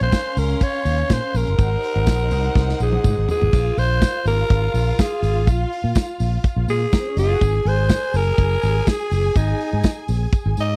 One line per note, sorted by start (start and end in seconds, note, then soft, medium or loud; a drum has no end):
0.00 0.09 A#1 loud
0.00 1.55 C#4 medium
0.00 0.40 C5 loud
0.00 1.55 F5 medium
0.00 1.55 C6 medium
0.00 closed hi-hat soft
0.12 kick loud
0.12 snare loud
0.12 closed hi-hat medium
0.12 tambourine medium
0.37 0.53 C#2 medium
0.37 0.64 A#4 medium
0.37 open hi-hat medium
0.37 tambourine medium
0.49 closed hi-hat soft
0.61 1.14 C#5 loud
0.61 kick loud
0.61 closed hi-hat medium
0.61 tambourine soft
0.85 1.02 D#2 loud
0.85 open hi-hat medium
0.85 tambourine medium
0.98 closed hi-hat soft
1.10 1.19 A#2 medium
1.10 1.38 C5 medium
1.10 kick medium
1.10 snare loud
1.10 closed hi-hat medium
1.10 tambourine medium
1.34 1.43 A#1 medium
1.34 2.81 A#4 loud
1.34 open hi-hat medium
1.34 tambourine medium
1.47 1.55 F#1 medium
1.47 closed hi-hat soft
1.58 1.75 G#1 loud
1.58 3.49 D#4 medium
1.58 3.49 C5 medium
1.58 3.49 F#5 medium
1.58 kick loud
1.58 closed hi-hat medium
1.58 tambourine medium
1.83 open hi-hat medium
1.83 tambourine soft
1.96 2.07 G#1 medium
1.96 closed hi-hat soft
2.07 2.31 A#1 loud
2.07 kick loud
2.07 snare loud
2.07 closed hi-hat medium
2.07 tambourine loud
2.31 2.48 C2 medium
2.31 open hi-hat medium
2.31 tambourine medium
2.44 closed hi-hat soft
2.55 2.72 C2 loud
2.55 kick loud
2.55 snare medium
2.55 tambourine soft
2.69 snare medium
2.80 2.97 A#1 medium
2.80 3.26 G#4 medium
2.80 tambourine medium
2.92 high tom medium
3.04 3.13 G#2 loud
3.04 kick loud
3.04 mid tom medium
3.04 tambourine medium
3.18 3.25 G#1 loud
3.29 3.80 G#4 loud
3.29 floor tom medium
3.29 tambourine medium
3.41 3.49 G#1 medium
3.41 floor tom medium
3.53 3.69 A#1 loud
3.53 6.84 F4 medium
3.53 6.84 F5 medium
3.53 kick loud
3.53 crash loud
3.53 tambourine medium
3.77 4.03 A#1 loud
3.77 4.26 C5 loud
3.77 open hi-hat medium
3.77 tambourine soft
4.02 kick loud
4.02 snare loud
4.02 closed hi-hat medium
4.02 tambourine loud
4.25 4.42 G#1 medium
4.25 5.03 A#4 loud
4.25 open hi-hat medium
4.25 tambourine soft
4.50 4.67 G#1 loud
4.50 kick loud
4.50 closed hi-hat medium
4.74 4.91 A#1 loud
4.74 open hi-hat medium
4.74 tambourine medium
4.99 5.48 G#4 loud
4.99 kick loud
4.99 snare loud
4.99 closed hi-hat medium
4.99 tambourine loud
5.22 5.47 G#1 loud
5.22 open hi-hat medium
5.22 tambourine medium
5.47 5.64 A#1 loud
5.47 6.17 F4 medium
5.47 kick loud
5.47 closed hi-hat medium
5.47 tambourine medium
5.73 open hi-hat medium
5.84 5.92 A#2 loud
5.95 kick loud
5.95 snare loud
5.95 closed hi-hat medium
5.95 tambourine loud
6.20 6.37 A#1 medium
6.20 open hi-hat medium
6.20 tambourine medium
6.44 kick loud
6.44 closed hi-hat medium
6.44 tambourine soft
6.56 6.64 A#1 loud
6.68 6.85 A#2 medium
6.68 7.14 G#4 loud
6.68 open hi-hat medium
6.68 tambourine medium
6.93 7.01 A#3 medium
6.93 7.01 A#4 medium
6.93 kick loud
6.93 snare loud
6.93 closed hi-hat medium
6.93 tambourine medium
7.01 7.09 C4 medium
7.01 7.09 C5 medium
7.09 7.17 C#4 medium
7.09 7.17 C#5 medium
7.17 7.33 F#1 loud
7.17 7.25 D#4 medium
7.17 7.69 G#4 loud
7.17 7.25 D#5 medium
7.17 open hi-hat medium
7.17 tambourine medium
7.26 7.34 F4 medium
7.26 7.34 F5 medium
7.34 7.42 F#4 medium
7.34 7.42 F#5 medium
7.41 7.58 G#1 loud
7.41 10.65 G#4 medium
7.41 10.65 G#5 loud
7.41 kick loud
7.41 closed hi-hat medium
7.41 tambourine medium
7.65 7.91 G#1 loud
7.65 8.18 C5 loud
7.65 open hi-hat medium
7.89 kick loud
7.89 snare loud
7.89 closed hi-hat medium
7.89 tambourine loud
8.14 8.31 F#1 loud
8.14 8.90 A#4 loud
8.14 open hi-hat medium
8.14 tambourine medium
8.38 8.55 F#1 loud
8.38 kick loud
8.38 closed hi-hat medium
8.38 tambourine soft
8.62 8.80 G#1 loud
8.62 open hi-hat medium
8.62 tambourine medium
8.87 9.39 G#4 loud
8.87 kick loud
8.87 snare loud
8.87 closed hi-hat medium
8.87 tambourine medium
9.11 9.28 F#1 medium
9.11 open hi-hat medium
9.11 tambourine medium
9.35 9.52 G#1 loud
9.35 10.09 D#4 medium
9.35 kick loud
9.35 closed hi-hat medium
9.35 tambourine medium
9.60 open hi-hat medium
9.73 9.81 G#2 loud
9.83 kick loud
9.83 snare loud
9.83 closed hi-hat medium
9.83 tambourine loud
10.08 10.25 A#1 medium
10.08 open hi-hat medium
10.08 tambourine medium
10.33 kick loud
10.33 closed hi-hat medium
10.33 tambourine soft
10.46 10.53 G#1 loud
10.57 10.74 G#2 loud
10.57 10.76 D#5 loud
10.57 open hi-hat medium
10.57 tambourine medium